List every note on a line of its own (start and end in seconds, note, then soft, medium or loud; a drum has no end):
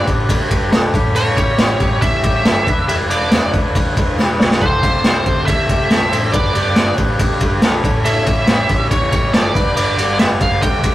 0.00 0.29 D4 soft
0.00 0.30 G4 medium
0.00 0.29 B4 medium
0.07 0.35 A1 medium
0.07 0.48 G4 medium
0.07 kick medium
0.07 ride medium
0.07 tambourine soft
0.28 0.50 G3 medium
0.28 0.51 A3 medium
0.28 0.51 D4 loud
0.28 0.50 G4 loud
0.28 0.49 B4 medium
0.28 kick medium
0.28 ride medium
0.28 tambourine medium
0.50 0.69 G1 loud
0.50 0.71 D4 soft
0.50 0.72 G4 medium
0.50 0.71 G4 medium
0.50 0.72 B4 medium
0.50 kick medium
0.50 ride medium
0.50 tambourine medium
0.71 0.90 B1 medium
0.71 0.93 A3 medium
0.71 0.94 D4 medium
0.71 0.92 G4 medium
0.71 0.92 A4 loud
0.71 0.94 B4 medium
0.71 snare loud
0.71 ride medium
0.71 tambourine medium
0.93 1.31 A1 loud
0.93 1.14 G3 soft
0.93 1.14 C#4 medium
0.93 1.15 G4 medium
0.93 1.14 A4 medium
0.93 kick loud
0.93 ride medium
0.93 tambourine soft
1.14 1.36 A2 medium
1.14 1.37 E3 medium
1.14 1.37 G3 medium
1.14 1.36 C#4 medium
1.14 1.35 G4 medium
1.14 1.37 A4 loud
1.14 2.01 C#5 loud
1.14 ride medium
1.36 1.74 A1 loud
1.36 1.82 G3 medium
1.36 1.81 C#4 medium
1.36 1.59 F4 medium
1.36 1.80 G4 medium
1.36 kick loud
1.36 ride medium
1.36 tambourine medium
1.58 1.80 E4 medium
1.58 snare loud
1.58 ride medium
1.58 tambourine loud
1.80 2.08 A1 medium
1.80 2.01 G3 medium
1.80 2.01 C#4 medium
1.80 2.21 G4 medium
1.80 2.01 G4 medium
1.80 kick medium
1.80 ride medium
1.80 tambourine soft
2.01 2.23 A2 medium
2.01 2.23 E3 medium
2.01 2.24 G3 medium
2.01 2.23 C#4 medium
2.01 2.22 G4 medium
2.01 2.84 E5 loud
2.01 kick loud
2.01 ride medium
2.01 tambourine medium
2.23 2.46 A1 loud
2.23 2.44 G3 soft
2.23 2.45 C#4 soft
2.23 2.45 G4 medium
2.23 2.45 G4 soft
2.23 kick medium
2.23 ride medium
2.23 tambourine soft
2.44 2.63 G1 loud
2.44 2.66 E3 medium
2.44 2.67 G3 medium
2.44 2.68 C#4 medium
2.44 2.67 G4 medium
2.44 2.67 A4 medium
2.44 snare loud
2.44 ride medium
2.44 tambourine medium
2.66 2.85 E1 medium
2.66 2.88 D4 soft
2.66 2.88 E4 medium
2.66 2.88 B4 medium
2.66 kick loud
2.66 ride medium
2.66 tambourine soft
2.88 3.07 E1 loud
2.88 3.10 E3 medium
2.88 3.10 G3 medium
2.88 3.10 D4 medium
2.88 3.10 E4 medium
2.88 3.10 G4 loud
2.88 3.08 B4 medium
2.88 2.94 E5 loud
2.88 ride medium
3.10 3.47 E1 loud
3.10 3.54 D4 soft
3.10 3.54 E4 medium
3.10 3.31 A4 medium
3.10 3.52 B4 medium
3.10 3.50 D5 medium
3.10 ride medium
3.10 tambourine medium
3.31 3.53 B4 medium
3.31 snare loud
3.31 ride medium
3.31 tambourine loud
3.53 3.81 E1 loud
3.53 3.75 D4 soft
3.53 3.75 E4 soft
3.53 3.75 B4 medium
3.53 3.96 D5 medium
3.53 kick medium
3.53 ride medium
3.53 tambourine soft
3.75 3.97 E3 medium
3.75 3.97 G3 loud
3.75 3.97 D4 medium
3.75 3.97 E4 medium
3.75 3.95 B4 medium
3.75 kick loud
3.75 ride medium
3.75 tambourine medium
3.96 4.15 E1 loud
3.96 4.18 D4 soft
3.96 4.18 E4 soft
3.96 4.18 B4 soft
3.96 4.18 C5 medium
3.96 kick medium
3.96 ride medium
3.96 tambourine medium
4.18 4.36 E1 loud
4.18 4.40 G3 medium
4.18 4.40 D4 medium
4.18 4.40 E4 medium
4.18 4.39 B4 medium
4.18 4.38 B4 medium
4.18 snare medium
4.18 tambourine medium
4.39 4.58 B1 medium
4.39 4.62 D4 soft
4.39 4.62 E4 soft
4.39 4.61 B4 medium
4.39 4.61 D5 medium
4.39 snare loud
4.51 snare medium
4.61 4.80 C2 medium
4.61 4.83 C3 medium
4.61 4.83 E3 medium
4.61 4.83 G3 medium
4.61 4.83 C4 medium
4.61 4.82 G4 medium
4.61 4.83 A4 loud
4.61 4.81 A4 medium
4.61 5.46 C5 medium
4.61 kick loud
4.61 splash medium
4.82 5.20 C2 loud
4.82 5.48 G3 soft
4.82 5.47 C4 medium
4.82 5.04 F4 medium
4.82 5.48 G4 medium
4.82 5.49 A4 medium
4.82 kick loud
4.82 ride medium
4.82 tambourine medium
5.04 5.26 E4 medium
5.04 snare loud
5.04 ride medium
5.04 tambourine medium
5.26 5.54 D2 medium
5.26 5.66 G4 medium
5.26 kick medium
5.26 ride medium
5.26 tambourine soft
5.46 5.69 C3 medium
5.46 5.69 E3 medium
5.46 5.70 G3 medium
5.46 5.69 C4 medium
5.46 5.68 G4 medium
5.46 5.67 A4 medium
5.46 6.32 E5 loud
5.46 kick loud
5.46 ride medium
5.46 tambourine medium
5.68 5.88 C2 loud
5.68 5.88 G3 soft
5.68 5.90 C4 soft
5.68 5.91 G4 medium
5.68 5.90 G4 soft
5.68 5.90 A4 medium
5.68 kick medium
5.68 ride medium
5.68 tambourine medium
5.89 6.09 B1 loud
5.89 6.12 G3 medium
5.89 6.12 C4 medium
5.89 6.11 G4 medium
5.89 6.11 A4 medium
5.89 snare loud
5.89 ride medium
5.89 tambourine medium
6.12 6.31 A1 medium
6.12 6.32 G3 medium
6.12 6.34 C4 medium
6.12 6.33 G4 medium
6.12 6.34 A4 medium
6.12 6.33 C5 medium
6.12 ride medium
6.32 6.52 G1 loud
6.32 6.55 G3 medium
6.32 6.55 A3 medium
6.32 6.55 D4 medium
6.32 6.55 G4 medium
6.32 6.54 B4 loud
6.32 6.54 B4 medium
6.32 6.53 D5 medium
6.32 kick loud
6.32 ride medium
6.54 6.92 G1 loud
6.54 6.99 D4 soft
6.54 6.76 G4 medium
6.54 6.99 G4 medium
6.54 6.96 B4 medium
6.54 6.95 D5 medium
6.54 ride medium
6.54 tambourine medium
6.76 6.98 F4 medium
6.76 snare loud
6.76 ride medium
6.76 tambourine medium
6.98 7.25 A1 medium
6.98 7.19 D4 soft
6.98 7.38 G4 medium
6.98 7.20 G4 soft
6.98 7.19 B4 medium
6.98 kick medium
6.98 ride medium
6.98 tambourine medium
7.19 7.41 G3 medium
7.19 7.42 A3 loud
7.19 7.42 D4 medium
7.19 7.41 G4 loud
7.19 7.40 B4 loud
7.19 kick medium
7.19 ride medium
7.19 tambourine medium
7.40 7.59 G1 loud
7.40 7.62 D4 medium
7.40 7.62 G4 medium
7.40 7.63 G4 soft
7.40 7.63 B4 soft
7.40 kick medium
7.40 ride medium
7.40 tambourine medium
7.62 7.81 B1 loud
7.62 7.84 A3 medium
7.62 7.84 D4 medium
7.62 7.82 G4 medium
7.62 7.83 A4 medium
7.62 7.85 B4 medium
7.62 snare loud
7.62 ride medium
7.62 tambourine medium
7.83 8.20 A1 loud
7.83 8.04 G3 medium
7.83 8.04 C#4 soft
7.83 8.05 E4 medium
7.83 8.04 A4 medium
7.83 kick loud
7.83 ride medium
8.04 8.26 A2 medium
8.04 8.27 E3 medium
8.04 8.27 G3 medium
8.04 8.26 C#4 medium
8.04 8.25 E4 medium
8.04 8.27 A4 loud
8.04 8.87 E5 loud
8.04 ride medium
8.26 8.63 A1 loud
8.26 8.71 G3 medium
8.26 8.69 C#4 medium
8.26 8.68 E4 medium
8.26 8.48 F4 medium
8.26 kick medium
8.26 ride medium
8.26 tambourine medium
8.47 8.69 E4 medium
8.47 snare loud
8.47 ride medium
8.47 tambourine medium
8.69 8.97 A1 loud
8.69 8.90 G3 soft
8.69 8.91 C#4 medium
8.69 8.91 E4 medium
8.69 9.10 G4 medium
8.69 kick medium
8.69 ride medium
8.69 tambourine medium
8.90 9.12 A2 medium
8.90 9.13 E3 medium
8.90 9.13 G3 medium
8.90 9.12 C#4 medium
8.90 9.11 E4 medium
8.90 9.34 C#5 medium
8.90 kick loud
8.90 ride medium
8.90 tambourine medium
9.12 9.31 A1 loud
9.12 9.33 G3 soft
9.12 9.33 C#4 soft
9.12 9.34 E4 medium
9.12 9.33 G4 medium
9.12 kick medium
9.12 ride medium
9.12 tambourine medium
9.33 9.52 G1 loud
9.33 9.55 E3 medium
9.33 9.55 G3 medium
9.33 9.55 C#4 medium
9.33 9.54 E4 medium
9.33 9.55 A4 medium
9.33 9.76 D5 medium
9.33 snare loud
9.33 ride medium
9.33 tambourine medium
9.54 9.74 G1 loud
9.54 9.76 G3 soft
9.54 9.76 B3 soft
9.54 9.76 D4 medium
9.54 9.75 B4 medium
9.54 kick loud
9.54 ride medium
9.76 9.94 G1 medium
9.76 9.98 G2 medium
9.76 9.98 D3 medium
9.76 9.98 G3 medium
9.76 9.98 B3 medium
9.76 9.96 D4 medium
9.76 9.97 B4 loud
9.76 10.19 D5 loud
9.76 ride medium
9.97 10.34 G1 medium
9.97 10.42 G3 soft
9.97 10.40 B3 soft
9.97 10.39 D4 medium
9.97 10.19 G4 medium
9.97 ride medium
9.97 tambourine medium
10.19 10.41 F4 medium
10.19 10.25 E5 loud
10.19 snare loud
10.19 ride medium
10.19 tambourine loud
10.40 10.68 G1 medium
10.40 10.62 G3 soft
10.40 10.62 B3 soft
10.40 10.62 D4 soft
10.40 10.81 G4 medium
10.40 10.62 F5 medium
10.40 kick medium
10.40 ride medium
10.40 tambourine medium
10.62 10.84 G2 medium
10.62 10.84 D3 medium
10.62 10.84 G3 loud
10.62 10.84 B3 medium
10.62 10.82 D4 medium
10.62 10.95 G5 loud
10.62 kick loud
10.62 ride medium
10.62 tambourine medium
10.83 10.95 G1 loud
10.83 10.95 G3 soft
10.83 10.95 B3 soft
10.83 10.95 D4 soft
10.83 10.95 G4 medium
10.83 kick medium
10.83 ride medium
10.83 tambourine medium